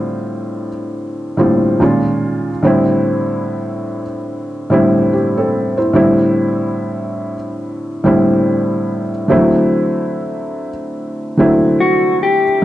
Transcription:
0.00 0.67 A2 medium
0.00 0.68 D3 medium
0.00 0.68 G3 medium
0.00 0.68 C4 medium
0.00 0.68 F4 medium
1.37 1.79 A2 medium
1.37 1.79 D3 medium
1.37 1.80 G3 medium
1.37 1.80 C4 medium
1.37 1.80 F4 medium
1.80 2.50 A#2 medium
1.80 2.50 D#3 medium
1.80 2.51 G#3 medium
1.80 2.51 C#4 medium
1.80 2.51 F4 medium
2.63 4.01 A2 medium
2.63 4.02 D3 medium
2.63 4.02 G3 medium
2.63 4.02 C4 medium
2.63 4.02 E4 medium
4.70 5.76 A2 medium
4.70 5.76 D3 medium
4.70 5.76 G3 medium
4.70 5.13 C4 medium
4.70 5.14 E4 medium
5.13 5.35 G4 medium
5.37 5.77 C4 medium
5.37 5.76 A4 medium
5.77 5.94 E4 soft
5.77 6.17 C5 medium
5.93 7.33 A2 medium
5.93 7.34 D3 medium
5.93 7.34 G3 medium
5.93 7.34 C4 medium
5.93 7.34 E4 medium
8.04 9.09 A2 medium
8.04 9.09 D3 medium
8.04 9.10 G3 medium
8.04 9.10 C4 medium
8.04 9.10 E4 medium
9.28 10.67 D3 medium
9.28 9.36 E3 medium
9.28 10.68 A3 medium
9.28 10.68 C4 medium
9.28 10.68 E4 medium
9.35 10.71 F#3 medium
11.37 12.43 D3 medium
11.37 12.43 F#3 medium
11.37 12.43 A3 medium
11.37 12.44 C4 medium
11.37 12.44 E4 medium
11.80 12.22 F#4 medium
12.23 12.65 G4 medium

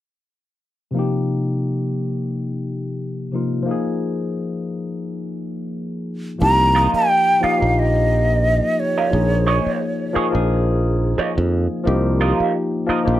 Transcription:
0.91 3.27 C3 medium
0.91 3.28 F3 soft
0.91 3.29 A#3 medium
0.97 3.30 D#4 medium
0.97 3.31 G4 medium
3.32 3.66 C3 soft
3.32 3.61 F3 soft
3.32 3.65 A#3 soft
3.32 3.67 D#4 soft
3.36 3.68 F4 soft
3.63 6.33 F3 medium
3.63 6.35 A#3 medium
3.68 6.36 D#4 soft
3.68 6.38 G#4 medium
6.39 6.86 C2 medium
6.39 7.31 F3 medium
6.39 7.32 A#3 soft
6.39 7.32 D#4 medium
6.39 7.33 G4 medium
6.39 6.90 A#5 loud
6.75 7.06 F4 medium
6.75 7.06 A#4 medium
6.75 7.07 D#5 medium
6.94 7.45 G5 medium
6.94 muted fingered electric bass stroke soft
7.40 7.58 F3 medium
7.40 7.58 A#3 medium
7.40 7.59 D#4 medium
7.40 7.53 F4 soft
7.40 7.59 G4 medium
7.40 7.53 A#4 soft
7.40 7.54 D#5 soft
7.40 7.81 F5 medium
7.40 muted fingered electric bass stroke soft
7.59 8.60 A#1 medium
7.59 8.79 F3 medium
7.59 8.80 A#3 medium
7.59 8.81 D#4 medium
7.63 8.82 A#4 medium
7.79 8.81 D#5 medium
8.80 10.15 C#5 medium
8.98 9.07 F4 soft
8.98 9.06 A#4 soft
8.98 9.06 D#5 soft
9.10 9.58 A#1 medium
9.10 10.03 F3 medium
9.10 10.04 A#3 medium
9.10 10.05 D#4 medium
9.14 10.05 G#4 medium
9.47 9.78 G#4 medium
9.47 9.78 C#5 medium
9.47 9.79 D#5 medium
9.66 muted fingered electric bass stroke soft
10.13 10.29 F3 medium
10.13 10.31 A#3 medium
10.13 10.31 D#4 medium
10.13 10.26 G#4 medium
10.13 10.32 G#4 medium
10.13 10.26 C#5 soft
10.13 10.26 D#5 medium
10.13 muted fingered electric bass stroke soft
10.31 11.52 F3 medium
10.31 11.53 A#3 medium
10.31 11.53 D#4 medium
10.35 11.14 A#1 medium
10.35 11.54 G#4 medium
11.18 11.31 G#4 medium
11.18 11.32 C#5 medium
11.18 11.32 D#5 medium
11.18 muted fingered electric bass stroke soft
11.38 11.66 F2 medium
11.84 12.32 C2 medium
11.84 12.76 F3 medium
11.84 12.77 A#3 medium
11.84 12.78 D#4 medium
11.84 12.78 G4 medium
12.21 12.52 F4 medium
12.21 12.52 A#4 medium
12.21 12.52 D#5 medium
12.40 muted fingered electric bass stroke soft
12.86 13.02 F3 medium
12.86 13.04 A#3 medium
12.86 13.04 D#4 medium
12.86 12.99 F4 medium
12.86 12.99 A#4 medium
12.86 13.05 A#4 medium
12.86 12.99 D#5 medium
12.86 muted fingered electric bass stroke soft
13.03 13.20 F3 medium
13.03 13.20 A#3 medium
13.03 13.20 D#4 medium
13.08 13.20 A#1 medium
13.08 13.13 F4 medium
13.14 13.20 G4 medium

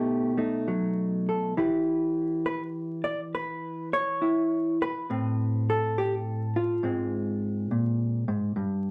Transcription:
0.00 1.56 B2 medium
0.00 0.36 A3 medium
0.00 0.37 D#4 soft
0.00 0.38 G4 medium
0.38 1.56 A3 soft
0.38 1.53 D#4 soft
0.68 1.53 F#3 medium
1.29 1.54 A4 medium
1.57 5.09 E3 medium
1.57 4.20 E4 soft
1.57 5.06 G4 soft
1.57 2.45 B4 medium
2.46 2.62 B4 medium
3.04 3.20 D5 medium
3.35 3.93 B4 medium
3.93 4.80 C#5 medium
4.22 5.05 E4 medium
4.82 5.68 B4 loud
5.10 6.80 A2 medium
5.10 6.81 C4 soft
5.70 6.84 A4 medium
5.98 6.14 G4 medium
6.56 8.58 F4 medium
6.83 7.70 G#2 medium
6.83 8.54 G#3 soft
6.83 8.54 C4 soft
7.71 8.28 A#2 medium
8.28 8.56 G#2 medium
8.56 8.91 G2 medium

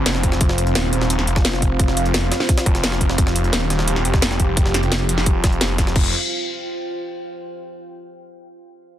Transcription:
0.00 5.92 C4 medium
0.00 5.92 F4 medium
0.00 5.95 F4 medium
0.00 5.96 C5 medium
0.00 5.96 F5 medium
0.00 0.40 G5 medium
0.06 0.39 F1 loud
0.06 snare loud
0.06 closed hi-hat medium
0.15 snare medium
0.23 kick medium
0.23 closed hi-hat medium
0.32 snare medium
0.41 0.74 F1 medium
0.41 3.17 F5 medium
0.41 kick loud
0.41 closed hi-hat medium
0.49 snare medium
0.58 closed hi-hat medium
0.67 closed hi-hat soft
0.75 1.26 D#1 loud
0.75 snare loud
0.75 closed hi-hat medium
0.93 closed hi-hat medium
1.01 snare medium
1.10 closed hi-hat medium
1.19 snare soft
1.27 1.78 F1 medium
1.27 closed hi-hat medium
1.36 kick loud
1.36 snare medium
1.45 snare loud
1.45 closed hi-hat medium
1.53 snare soft
1.62 kick medium
1.62 closed hi-hat medium
1.79 2.30 F1 loud
1.79 kick loud
1.79 closed hi-hat medium
1.88 snare soft
1.97 closed hi-hat medium
2.06 closed hi-hat soft
2.14 snare loud
2.14 closed hi-hat medium
2.32 snare loud
2.32 closed hi-hat medium
2.40 snare soft
2.49 kick loud
2.49 snare soft
2.49 closed hi-hat medium
2.58 snare loud
2.58 closed hi-hat medium
2.66 3.17 F1 medium
2.66 kick loud
2.66 closed hi-hat medium
2.75 snare soft
2.75 closed hi-hat medium
2.84 snare loud
2.84 closed hi-hat medium
2.92 snare medium
3.01 kick medium
3.01 closed hi-hat medium
3.10 snare medium
3.18 3.52 F1 loud
3.18 5.95 G4 medium
3.18 kick loud
3.18 closed hi-hat medium
3.27 snare medium
3.36 closed hi-hat medium
3.44 closed hi-hat soft
3.53 4.04 D#1 loud
3.53 snare loud
3.53 closed hi-hat medium
3.53 closed hi-hat loud
3.70 snare soft
3.70 closed hi-hat medium
3.79 snare medium
3.88 closed hi-hat medium
3.88 closed hi-hat loud
3.96 snare soft
4.05 4.56 F1 medium
4.05 closed hi-hat medium
4.14 kick loud
4.14 snare medium
4.22 snare loud
4.22 closed hi-hat medium
4.22 closed hi-hat loud
4.31 snare medium
4.40 kick medium
4.40 closed hi-hat medium
4.57 5.08 F1 loud
4.57 kick loud
4.57 closed hi-hat loud
4.57 closed hi-hat medium
4.66 snare soft
4.74 snare medium
4.74 closed hi-hat medium
4.83 closed hi-hat soft
4.92 snare loud
4.92 closed hi-hat loud
4.92 closed hi-hat medium
5.09 5.60 F1 loud
5.09 closed hi-hat medium
5.18 snare soft
5.26 kick loud
5.26 closed hi-hat loud
5.44 kick loud
5.44 snare loud
5.44 closed hi-hat medium
5.53 closed hi-hat soft
5.61 5.77 F1 loud
5.61 snare loud
5.61 closed hi-hat loud
5.61 closed hi-hat medium
5.78 5.94 F1 loud
5.78 kick medium
5.78 snare soft
5.78 closed hi-hat medium
5.87 snare soft
5.96 6.12 F1 loud
5.96 7.30 F4 medium
5.96 kick loud
5.96 crash medium
6.01 7.31 C5 medium
6.06 7.30 G5 medium

